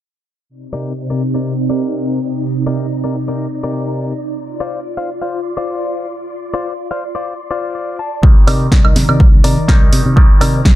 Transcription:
0.49 string machine C3 D#4 D5 A#5
0.73 clean electric guitar C3 D#4 A#4 D5
1.10 clean electric guitar C3 D#4 A#4 D5
1.34 clean electric guitar C3 D#4 A#4 D5
1.70 clean electric guitar C3 D#4 A#4 D5
2.67 clean electric guitar C3 D#4 A#4 D5
3.04 clean electric guitar C3 D#4 A#4 D5
3.28 clean electric guitar C3 D#4 A#4 D5
3.63 clean electric guitar C3 D#4 A#4 D5
4.36 string machine F4 C6
4.60 clean electric guitar F4 C5 D5
4.97 clean electric guitar F4 C5 F5
5.22 clean electric guitar F4 C5 F5
5.57 clean electric guitar F4 C5 D5
6.54 clean electric guitar F4 C5 D5
6.91 clean electric guitar F4 C5 F5
7.15 clean electric guitar F4 C5 D5
7.51 clean electric guitar F4 C5 D5
7.75 clean electric guitar D5
7.99 clean electric guitar A5
8.23 fingered electric bass C2, clav D#3 G3 A#3, string machine D#3 A#5, kick
8.47 fingered electric bass C3, clean electric guitar D#4 A#4 D5, open hi-hat, high woodblock
8.72 fingered electric bass C2, kick, snare
8.84 clean electric guitar D#4 A#4 D#5, high woodblock
8.96 fingered electric bass C3, snare, open hi-hat
9.09 fingered electric bass C3, clean electric guitar D#4 A#4 D5, high woodblock
9.20 fingered electric bass C2, kick
9.44 fingered electric bass C3, clean electric guitar D#4 A#4 D5, open hi-hat
9.57 muted fingered electric bass stroke
9.68 fingered electric bass C2, clav D#3 G3 A#3 D#4, kick, snare
9.93 fingered electric bass C3, open hi-hat
10.06 fingered electric bass C3
10.16 fingered electric bass C2, clav D#3 G3 A#3 D5, string machine C5, kick
10.41 fingered electric bass C3, clean electric guitar D#4 A#4 D5, open hi-hat, high woodblock
10.65 fingered electric bass C2, kick, snare

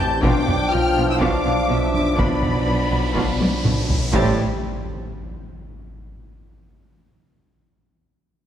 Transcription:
Already playing: detuned saw bass A1, trombone section E3 C4, french horn section G4, violin section A5
0.00 violin section G6
0.20 detuned saw bass B1, double bass section B1, cello section B2, trombone section F3 D4, french horn section D4, viola section D4 F4, violin section G5, taiko
0.24 violin section D6, riser
0.47 double bass section B1, cello section B2, viola section B3 D4, taiko low-mid
0.70 double bass section B1, cello section B2, viola section F3 B3, french horn section F4, violin section F6
0.97 double bass section B1, cello section B2, viola section B3 D4
1.07 french horn section E4, violin section E6
1.20 double bass section B1, cello section B2, french horn section D4, viola section D4 F4, violin section F5 D6, taiko
1.45 double bass section B1, cello section B2, viola section B3 D4
1.69 double bass section B1, cello section B2, viola section F3 B3, violin section E5
1.92 french horn section D4, violin section D6, taiko low-mid
2.17 double bass section B1, cello section B2, french horn section B3, viola section D4 F4, violin section D5 B5, taiko
2.42 double bass section B1, cello section B2, viola section B3 D4, taiko low-mid
2.66 double bass section B1, cello section B2, viola section F3 B3
2.90 double bass section B1, cello section B2, viola section B3 D4, taiko rim
3.15 double bass section B1, cello section B2, viola section D4 F4, taiko
3.38 double bass section B1, cello section B2, viola section B3 D4, taiko high
3.63 double bass section B1, cello section B2, viola section F3 B3, taiko mid
3.89 taiko low
4.12 detuned saw bass A1, double bass section A1, cello section A2, viola section E3 E4, trombone section G3 C4, french horn section A3, violin section G4 C5 A6, taiko, impact

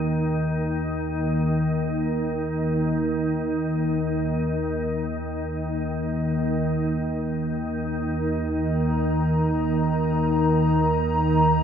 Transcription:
Already playing: synth drone D#2 D#3
6.63 synth drone D#2 D#3, analog synth pad D#3
7.73 analog synth pad D#4
8.50 analog synth pad A#4
8.57 analog synth pad A#5

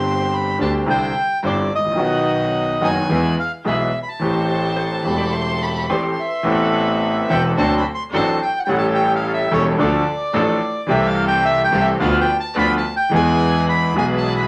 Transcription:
Already playing: double bass G1, grand piano G1 G2 D3 G3 C4 G4, string section D4 G4 C5, bandoneon C6
0.33 bandoneon B5
0.59 grand piano D2 D3 G3 C4 G4, double bass D2, string section D4 G4 C5, bandoneon A5
0.86 grand piano C2 C3 D3 G3 C4 E4, double bass C2, string section D4 E4 C5, bandoneon G5
1.43 grand piano G1 G2 D3 G3 C4 E4, double bass G1, string section D4 E4 C5, bandoneon D5
1.71 double bass A1, bandoneon D#5
1.78 grand piano G#1
1.85 grand piano A1
1.91 grand piano A#1 D#3
1.97 grand piano B1 B2 F#3 B3 F#4, double bass B1, string section D#4 F#4 B4
2.81 grand piano F#1 F#2 D#3 F#3 B3 F#4, double bass F#1, string section D#4 F#4 B4, bandoneon G#5
3.09 grand piano E2 E3 G#3 B3 G#4, double bass E2, string section E4 G#4 B4
3.40 bandoneon F5
3.65 grand piano B1 B2 E3 G#3 B3 G#4, double bass B1, string section E4 G#4 B4, bandoneon E5
4.03 bandoneon B5
4.08 bandoneon A5
4.20 double bass A1, grand piano A1 A2 E3 A3 C4 G4, string section G4 A4 C5
4.76 hollow-body jazz guitar C5, violin A5
5.03 grand piano E1 E2 E3 A3 C4, double bass E1, string section G4 A4 C5, violin B5
5.07 grand piano G4
5.18 hollow-body jazz guitar D5
5.33 hollow-body jazz guitar E5, violin C6
5.63 violin B5
5.89 grand piano A1 A2 E3 A3 C4 G4, string section G4 A4 C5, hollow-body jazz guitar C5, bandoneon D5, violin C6
6.20 bandoneon E5
6.28 hollow-body jazz guitar B4
6.43 grand piano A1 A2 E3 B3 C4 A4, double bass A1, string section A4 B4
7.29 grand piano E1 E2 E3 B3 C4 A4, double bass E1, string section C4 A4 B4, bandoneon G5
7.56 double bass D2, grand piano D2 D3 F#3 C4 D4 A4, string section D4 F#4 C5, bandoneon A5
7.78 bandoneon B5
7.95 bandoneon C6
8.13 double bass A1, grand piano A1 A2 F#3 C4 D4 A4, string section D4 F#4 C5, bandoneon A5
8.43 bandoneon G5
8.59 bandoneon F#5
8.65 double bass A1, grand piano A1 G3 C#4, string section C#4 G4 A4, bandoneon F#5 G5
8.69 grand piano A2 E4 A4
8.78 bandoneon A5
8.95 bandoneon G5
9.15 bandoneon F5
9.33 bandoneon E5
9.51 double bass E1, grand piano E1 E2 G3 C#4 E4 A4, string section C#4 G4 A4, bandoneon C#5
9.78 grand piano D2 D3 F3 A3 D4 A4, double bass D2, string section D4 F4 A4, bandoneon D5
10.33 grand piano A1 A2 F3 A3 D4 A4, double bass A1, string section D4 F4 A4
10.87 double bass C2, grand piano C2 C3 E3 A3 C4 G4, string section C4 G4 A4, bandoneon E5
11.07 bandoneon F5
11.28 bandoneon G5
11.45 bandoneon E5
11.64 bandoneon G5
11.72 grand piano C2 C3 E3 A3 C4 G4, double bass C2, string section C4 G4 A4
11.81 bandoneon E5
11.99 grand piano D2 D3 F3 B3 F4, double bass D2, string section D4 F4 B4, bandoneon F5
12.21 bandoneon G5
12.40 bandoneon A5
12.55 double bass D2, grand piano D2 D3 F3 B3 F4, string section D4 F4 B4, bandoneon B5
12.78 bandoneon A5
12.96 bandoneon G5
13.10 grand piano E2 E3 G#3 B3, double bass E2, string section E4 G#4 B4
13.14 grand piano G#4, bandoneon G#5
13.69 bandoneon B5
13.94 double bass B1, grand piano B1 B2 E3 G#3 B3 G#4, string section E4 G#4 B4
13.98 bandoneon G#5
14.17 bandoneon A5
14.36 bandoneon B5

